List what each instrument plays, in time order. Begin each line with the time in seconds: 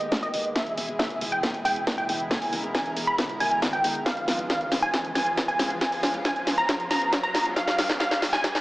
Already playing: analog synth pad D#3 G#3 A#3 B3 G4, supersaw synth D#5, riser
0.01 closed hi-hat
0.12 kick, snare, closed hi-hat
0.23 supersaw synth D#5, closed hi-hat
0.34 analog synth bass G#1, open hi-hat
0.55 analog synth pad B2 E3 E4 G#4, supersaw synth E5, kick, snare, closed hi-hat
0.67 closed hi-hat
0.78 analog synth bass E2, open hi-hat
0.88 analog synth bass E2
0.99 supersaw synth E5, kick, snare, closed hi-hat
1.10 closed hi-hat
1.21 analog synth bass E2, open hi-hat
1.32 supersaw synth G5, closed hi-hat
1.43 kick, snare, closed hi-hat
1.54 closed hi-hat
1.65 analog synth bass E2, supersaw synth G5, open hi-hat
1.76 closed hi-hat
1.87 kick, snare, closed hi-hat
1.98 supersaw synth G5, closed hi-hat
2.09 analog synth bass E2, open hi-hat
2.20 closed hi-hat
2.31 analog synth pad A#4, supersaw synth G#5, kick, snare, closed hi-hat
2.42 open hi-hat
2.53 analog synth bass E2, open hi-hat
2.64 analog synth bass E2, closed hi-hat
2.75 supersaw synth G#5, kick, snare, closed hi-hat
2.86 closed hi-hat
2.97 analog synth bass E2, open hi-hat
3.07 supersaw synth B5
3.18 kick, snare, closed hi-hat
3.29 closed hi-hat
3.40 analog synth bass E2, supersaw synth G#5, open hi-hat
3.51 closed hi-hat
3.62 kick, snare, closed hi-hat
3.73 supersaw synth G5, closed hi-hat
3.84 analog synth bass E2, open hi-hat
3.95 closed hi-hat
4.06 analog synth pad C#3 F3 B3 F4, supersaw synth F5, kick, snare, closed hi-hat
4.17 closed hi-hat
4.28 analog synth bass C#2, snare, open hi-hat
4.39 analog synth bass C#2, closed hi-hat
4.50 supersaw synth F5, kick, snare, closed hi-hat
4.61 closed hi-hat
4.72 analog synth bass C#2, snare, open hi-hat
4.82 supersaw synth G#5, closed hi-hat
4.94 kick, snare, closed hi-hat
5.05 closed hi-hat
5.15 analog synth bass C#2, supersaw synth G#5, snare, open hi-hat
5.27 closed hi-hat
5.37 kick, snare, closed hi-hat
5.48 supersaw synth G#5, closed hi-hat
5.59 analog synth bass C#2, snare, open hi-hat
5.70 closed hi-hat
5.81 supersaw synth G#5, kick, snare, closed hi-hat
5.92 open hi-hat
6.03 analog synth bass C#2, snare, open hi-hat
6.14 analog synth bass C#2, closed hi-hat
6.25 supersaw synth G#5, kick, snare, closed hi-hat
6.36 closed hi-hat
6.47 analog synth bass C#2, snare, open hi-hat
6.58 supersaw synth A#5, closed hi-hat
6.69 kick, snare, closed hi-hat
6.80 closed hi-hat
6.91 analog synth bass C#2, supersaw synth A#5, snare, open hi-hat
7.02 closed hi-hat
7.13 kick, snare, closed hi-hat
7.23 supersaw synth A#5, closed hi-hat
7.34 analog synth bass C#2, snare, open hi-hat
7.56 analog synth pad G4, supersaw synth F5, kick, snare, closed hi-hat
7.68 snare, closed hi-hat
7.78 analog synth bass C#2, snare, open hi-hat
7.89 analog synth bass C#2, snare, closed hi-hat
8.00 supersaw synth F5, kick, snare, closed hi-hat
8.11 snare, closed hi-hat
8.22 analog synth bass C#2, snare, open hi-hat
8.33 supersaw synth G#5, snare, closed hi-hat
8.44 kick, snare, closed hi-hat
8.55 snare, closed hi-hat